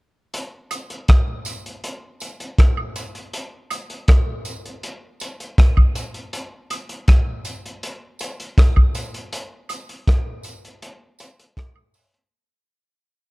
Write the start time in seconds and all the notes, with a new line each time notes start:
0.34 closed hi-hat
0.71 closed hi-hat, tambourine, high woodblock
0.90 closed hi-hat
1.08 kick, cross-stick, closed hi-hat
1.45 closed hi-hat, tambourine
1.66 closed hi-hat
1.84 closed hi-hat
2.20 closed hi-hat, tambourine
2.40 closed hi-hat
2.59 kick, cross-stick, closed hi-hat
2.77 high woodblock
2.96 closed hi-hat, tambourine
3.15 closed hi-hat
3.33 closed hi-hat
3.70 closed hi-hat, tambourine, high woodblock
3.90 closed hi-hat
4.08 kick, cross-stick, closed hi-hat
4.45 closed hi-hat, tambourine
4.65 closed hi-hat
4.83 closed hi-hat
5.20 closed hi-hat, tambourine
5.40 closed hi-hat
5.58 kick, cross-stick, closed hi-hat
5.77 kick, high woodblock
5.95 closed hi-hat, tambourine
6.14 closed hi-hat
6.33 closed hi-hat
6.70 closed hi-hat, tambourine, high woodblock
6.89 closed hi-hat
7.08 kick, cross-stick, closed hi-hat
7.45 closed hi-hat, tambourine
7.66 closed hi-hat
7.83 closed hi-hat
8.19 closed hi-hat, tambourine
8.40 closed hi-hat
8.58 kick, cross-stick, closed hi-hat
8.76 kick, high woodblock
8.95 closed hi-hat, tambourine
9.14 closed hi-hat
9.33 closed hi-hat
9.69 closed hi-hat, tambourine, high woodblock
9.89 closed hi-hat
10.07 kick, cross-stick, closed hi-hat
10.43 closed hi-hat, tambourine
10.65 closed hi-hat
10.82 closed hi-hat
11.19 closed hi-hat, tambourine
11.39 closed hi-hat
11.57 kick, cross-stick, closed hi-hat
11.76 high woodblock
11.94 open hi-hat, tambourine
12.14 closed hi-hat